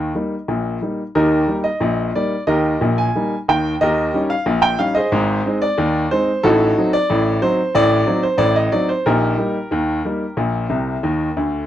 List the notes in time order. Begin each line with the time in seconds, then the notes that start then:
Already playing: D#2 D#3 D#5
0.15 G3 A#3 D#4
0.48 A#1 A#2
0.82 G3 A#3 D#4
1.15 D#2 D#3 D#4 G4 A#4
1.48 G3 A#3 D#4
1.64 D#5
1.80 A#1 A#2
2.15 G3 A#3 D#4 D5
2.47 D#2 D#3 G4 A#4 D#5
2.81 A#1 A#2
2.98 G#5
3.15 G3 A#3 D#4
3.48 D#2 D#3 G5
3.81 D#2 D#3 G4 A#4 D#5
4.14 G3 C#4 D#4
4.30 F5
4.46 A#1 A#2
4.62 G5
4.79 G3 C#4 D#4 F5
4.95 G#4 C5 D#5
5.12 G#1 G#2
5.46 G#3 C4 D#4
5.62 D5
5.78 D#2 D#3
6.11 G#3 C4 D#4 C5
6.43 A1 A2 D#4 F#4 A4
6.78 F#3 C4 D#4
6.93 D5
7.10 A1 A2
7.42 F#3 C4 D#4 C5
7.75 A1 A2 D5
8.06 F#3 C4 D#4
8.23 C5
8.38 A1 A2 D5
8.56 D#5
8.72 F#3 C4 D#4 D5
8.89 C5
9.06 A#1 A#2 D#4 G4 A#4
9.38 G3 A#3 D#4
9.71 D#2 D#3
10.05 G3 A#3 D#4
10.37 A#1 A#2
10.70 C2 C3
11.03 D#2 D#3
11.37 D2 D3